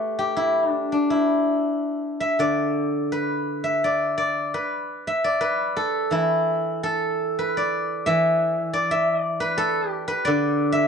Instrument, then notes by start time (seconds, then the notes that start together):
guzheng
Already playing: A3 G4 B4
0.19 G4
0.37 E4
0.70 D4
0.92 D4
1.10 E4
2.20 E5
2.39 D3 D5
3.12 B4
3.64 E5
3.84 D5
4.18 D5
4.54 B4
5.07 E5
5.24 D5
5.41 B4
5.77 A4
6.11 E3 E4
6.83 A4
7.39 B4
7.57 D5
8.06 E3 E5
8.73 D5
8.91 E5
9.22 D5
9.40 B4
9.58 A4
9.89 G4
10.08 B4
10.25 D3 D5
10.72 E5